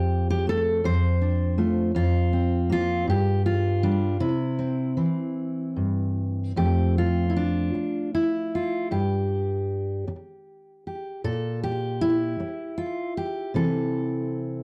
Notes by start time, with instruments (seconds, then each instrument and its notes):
Already playing: steel-string acoustic guitar F2 F4 G4
0.30 steel-string acoustic guitar G4
0.47 steel-string acoustic guitar A3 A4
0.84 steel-string acoustic guitar F2 C5
1.22 steel-string acoustic guitar D4
1.58 steel-string acoustic guitar A3 F4
1.95 steel-string acoustic guitar F2 F4
2.33 steel-string acoustic guitar C4
2.70 steel-string acoustic guitar A#3 F4
3.07 steel-string acoustic guitar G2 G4
3.46 steel-string acoustic guitar F4
3.83 steel-string acoustic guitar G3 D4
4.20 steel-string acoustic guitar C3 E4
4.59 steel-string acoustic guitar C4
4.97 steel-string acoustic guitar E3 C4
5.76 steel-string acoustic guitar G2
6.56 steel-string acoustic guitar F2 F3 A3 C4 G4
6.98 steel-string acoustic guitar F4
7.30 steel-string acoustic guitar E4
7.37 steel-string acoustic guitar D4
7.74 muted steel-string acoustic guitar stroke
8.15 steel-string acoustic guitar E4
8.55 steel-string acoustic guitar F4
8.91 steel-string acoustic guitar G2 G4
10.07 muted steel-string acoustic guitar stroke
10.87 steel-string acoustic guitar G4
11.24 steel-string acoustic guitar A#2 A4
11.63 steel-string acoustic guitar G4
12.01 steel-string acoustic guitar E4
12.40 muted steel-string acoustic guitar stroke
12.78 steel-string acoustic guitar F4
13.17 steel-string acoustic guitar G4
13.54 steel-string acoustic guitar C3 E3 C4 E4 A4